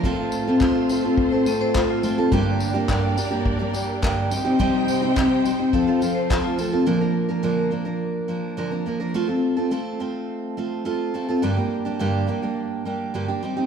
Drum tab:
TB |-x-x-x-x|-x-x-x-x|-x-x-x-x|--------|
CP |--x---x-|--x---x-|--x---x-|--------|
BD |o-o-o-o-|o-o-o-o-|o-o-o-o-|--------|

TB |--------|--------|
CP |--------|--------|
BD |--------|--------|